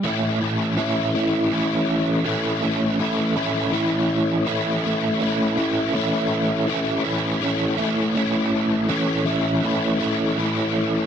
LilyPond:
\new Staff \with { instrumentName = "Overdriven electric guitar" } { \time 6/8 \key a \major \tempo 4. = 54 <a, e a cis' e'>8 <a cis' e'>8 <e a cis' e'>8 <a, e a cis' e'>8 <e a cis' e'>4 | <a, e a cis' e'>8 <a cis' e'>8 <e a cis' e'>8 <a, e a cis' e'>8 <e a cis' e'>4 | <a, e a cis' e'>8 <a cis' e'>8 <e a cis' e'>8 <a, e a cis' e'>8 <e a cis' e'>4 | <a, e a cis' e'>8 <a cis' e'>8 <e a cis' e'>8 <a, e a cis' e'>8 <e a cis' e'>4 |
<a, e a cis' e'>8 <a cis' e'>8 <e a cis' e'>8 <a, e a cis' e'>8 <e a cis' e'>4 | }